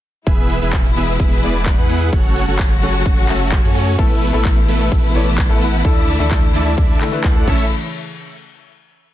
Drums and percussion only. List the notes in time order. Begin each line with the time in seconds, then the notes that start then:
0.27 kick
0.50 open hi-hat
0.73 kick, clap
0.96 open hi-hat
1.20 kick
1.43 open hi-hat
1.66 kick, clap
1.89 open hi-hat
2.13 kick
2.36 open hi-hat
2.59 kick, clap
2.82 open hi-hat
3.06 kick
3.29 clap, open hi-hat
3.52 kick, clap
3.75 open hi-hat
3.99 kick
4.22 open hi-hat
4.45 kick, clap
4.69 open hi-hat
4.92 kick
5.15 open hi-hat
5.38 kick, clap
5.62 open hi-hat
5.85 kick
6.08 open hi-hat
6.31 kick, clap
6.55 open hi-hat
6.78 kick
7.01 clap, open hi-hat
7.24 kick, clap
7.48 kick, crash